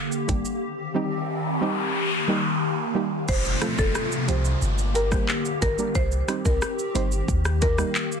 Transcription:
0.00 0.61 D3 medium
0.00 0.61 A#3 medium
0.00 3.25 G4 medium
0.12 shaker soft
0.28 0.42 G1 loud
0.28 0.42 G3 medium
0.28 0.42 A#3 medium
0.28 0.42 D4 medium
0.28 0.42 G4 loud
0.28 kick medium
0.28 closed hi-hat medium
0.28 shaker medium
0.45 shaker medium
0.62 3.26 D#3 medium
0.62 1.94 C4 medium
0.62 noise sweep medium
0.94 1.08 G3 medium
0.94 1.08 C4 medium
0.94 1.09 D#4 medium
0.94 1.09 G4 medium
1.61 1.75 G3 medium
1.61 1.75 C4 medium
1.61 1.75 D#4 medium
1.61 1.76 G4 medium
1.95 3.27 A#3 medium
2.28 2.41 G3 medium
2.28 2.42 A#3 medium
2.28 2.42 D#4 medium
2.28 2.42 G4 loud
2.94 3.08 G3 medium
2.94 3.08 A#3 medium
2.94 3.09 D#4 medium
2.94 3.09 G4 medium
3.28 3.56 F1 loud
3.28 4.61 C3 medium
3.28 4.61 A3 medium
3.28 4.61 F4 medium
3.28 3.42 C5 medium
3.28 kick loud
3.28 crash loud
3.28 downlifter medium
3.28 shaker medium
3.45 shaker medium
3.61 3.75 F3 medium
3.61 3.75 A3 medium
3.61 3.75 C4 medium
3.61 3.75 F4 medium
3.61 3.76 A4 medium
3.61 cross-stick loud
3.61 closed hi-hat medium
3.61 shaker medium
3.79 3.92 F1 loud
3.79 4.05 A4 medium
3.79 kick medium
3.79 shaker medium
3.95 cross-stick medium
3.95 shaker medium
4.12 shaker medium
4.28 4.56 C2 loud
4.28 4.42 F3 medium
4.28 4.42 A3 medium
4.28 4.42 C4 medium
4.28 4.42 F4 medium
4.28 4.42 G4 medium
4.28 4.55 C5 medium
4.28 closed hi-hat medium
4.28 shaker medium
4.45 shaker medium
4.62 5.16 G1 loud
4.62 5.94 D3 medium
4.62 5.94 A#3 medium
4.62 5.94 G4 medium
4.62 shaker medium
4.78 shaker medium
4.94 5.01 G4 medium
4.94 5.08 A#4 medium
4.94 5.02 A#4 medium
4.94 closed hi-hat medium
4.94 shaker soft
5.11 5.25 G3 medium
5.11 5.25 A#3 medium
5.11 5.25 D4 medium
5.11 5.25 G4 medium
5.11 5.26 C5 medium
5.11 kick loud
5.11 cross-stick medium
5.11 shaker medium
5.28 clap medium
5.28 shaker medium
5.45 shaker soft
5.61 5.76 G1 loud
5.61 5.68 G4 medium
5.61 5.75 A#4 medium
5.61 5.69 A#4 medium
5.61 kick medium
5.61 closed hi-hat medium
5.61 shaker medium
5.78 5.92 G3 medium
5.78 5.92 A#3 medium
5.78 5.92 D4 medium
5.78 5.92 G4 medium
5.78 5.92 A#4 medium
5.78 shaker medium
5.95 6.22 C2 loud
5.95 8.20 D#3 medium
5.95 7.27 C4 medium
5.95 8.20 G4 medium
5.95 6.08 C5 loud
5.95 kick loud
5.95 shaker medium
6.12 shaker medium
6.28 6.42 G3 medium
6.28 6.42 C4 medium
6.28 6.42 D#4 medium
6.28 6.42 G4 medium
6.28 6.42 C5 medium
6.28 cross-stick loud
6.28 closed hi-hat medium
6.28 shaker medium
6.45 6.59 C2 medium
6.45 6.72 A#4 medium
6.45 kick medium
6.45 shaker medium
6.62 cross-stick loud
6.62 shaker medium
6.79 shaker medium
6.94 7.22 G1 loud
6.94 7.08 G3 medium
6.94 7.08 C4 medium
6.94 7.09 D#4 medium
6.94 7.09 G4 medium
6.94 7.22 C5 medium
6.94 7.09 C5 medium
6.94 closed hi-hat medium
6.94 shaker medium
7.12 shaker medium
7.28 7.83 D#2 loud
7.28 8.20 A#3 medium
7.28 kick loud
7.28 shaker medium
7.45 cross-stick medium
7.45 shaker medium
7.61 7.68 G4 medium
7.61 7.75 A#4 medium
7.61 7.69 A#4 medium
7.61 kick loud
7.61 closed hi-hat medium
7.61 shaker medium
7.78 7.92 G3 medium
7.78 7.92 A#3 medium
7.78 7.92 D#4 medium
7.78 7.92 G4 medium
7.78 7.92 A#4 medium
7.78 cross-stick medium
7.78 shaker medium
7.95 clap medium
7.95 shaker medium
8.12 shaker medium

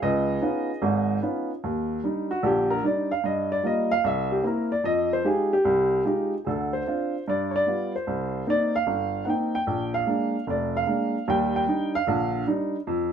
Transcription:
0.02 0.37 C#2 medium
0.02 1.19 G#4 medium
0.02 1.19 B4 medium
0.02 1.19 D#5 medium
0.41 0.69 B3 medium
0.41 0.70 C#4 medium
0.41 0.70 D#4 medium
0.41 0.70 F4 medium
0.82 1.17 G#1 medium
0.82 1.17 G#2 medium
1.22 1.50 B3 medium
1.22 1.50 C#4 soft
1.22 1.50 D#4 soft
1.22 1.50 F4 medium
1.64 1.98 D#2 medium
2.04 2.31 G3 medium
2.04 2.31 D4 soft
2.04 2.31 D#4 medium
2.31 2.43 F#4 medium
2.43 2.78 A#1 medium
2.43 2.78 D3 medium
2.43 2.70 G4 medium
2.70 2.83 A#4 medium
2.83 3.11 G3 medium
2.83 3.11 D4 soft
2.83 3.11 D#4 medium
2.83 3.10 D5 medium
3.11 3.24 F5 medium
3.24 3.58 G2 medium
3.24 3.50 D#5 medium
3.52 3.64 D5 medium
3.63 3.91 G3 soft
3.63 3.92 A#3 medium
3.63 3.92 F4 medium
3.63 3.91 D#5 medium
3.91 4.04 F5 loud
4.04 4.39 C2 medium
4.04 4.31 E5 medium
4.32 4.45 G4 medium
4.44 4.72 A#3 medium
4.44 4.72 C4 soft
4.44 4.72 E4 medium
4.44 4.71 A#4 medium
4.72 4.85 D5 medium
4.84 5.19 F2 medium
4.84 5.10 D#5 medium
5.13 5.25 C5 medium
5.24 5.52 G#3 soft
5.24 5.52 D#4 soft
5.24 5.53 F4 soft
5.24 5.52 G4 medium
5.24 5.52 G#4 medium
5.53 6.02 G4 medium
5.65 6.00 C2 medium
6.05 6.32 G#3 soft
6.05 6.33 D#4 soft
6.05 6.33 F4 soft
6.05 6.33 G4 medium
6.45 6.81 D2 medium
6.45 6.81 D3 medium
6.45 6.47 G#4 soft
6.49 6.73 A4 medium
6.73 7.23 C5 medium
6.86 7.14 C4 soft
6.86 7.14 D4 medium
6.86 7.14 F4 medium
7.28 7.61 G2 medium
7.28 7.53 D5 medium
7.56 7.91 D5 medium
7.67 7.94 G3 soft
7.67 7.94 B3 soft
7.67 7.94 F4 soft
7.96 8.44 C5 medium
8.07 8.41 C2 medium
8.47 8.74 A#3 soft
8.47 8.74 C4 soft
8.47 8.75 D#4 medium
8.47 8.74 D5 medium
8.76 9.24 F5 medium
8.87 9.21 G1 medium
9.25 9.54 A#3 soft
9.25 9.54 C4 soft
9.25 9.54 D#4 medium
9.25 9.28 F#5 soft
9.30 9.53 G5 medium
9.55 9.91 G5 medium
9.67 10.01 A#1 medium
9.94 10.44 F5 medium
10.07 10.34 G#3 medium
10.07 10.35 A#3 soft
10.07 10.35 D4 medium
10.47 10.82 F1 medium
10.47 10.74 D5 medium
10.77 11.25 F5 medium
10.87 11.14 G#3 medium
10.87 11.15 A#3 soft
10.87 11.15 D4 medium
11.28 11.62 D#2 medium
11.28 11.62 G3 medium
11.28 11.54 G5 medium
11.56 11.92 G5 medium
11.67 11.95 G3 soft
11.67 11.95 D4 soft
11.67 11.95 D#4 medium
11.95 12.45 F5 medium
12.07 12.42 A#1 medium
12.07 12.42 D3 medium
12.47 12.75 G3 soft
12.47 12.75 D4 soft
12.47 12.75 D#4 medium
12.87 13.12 F2 medium

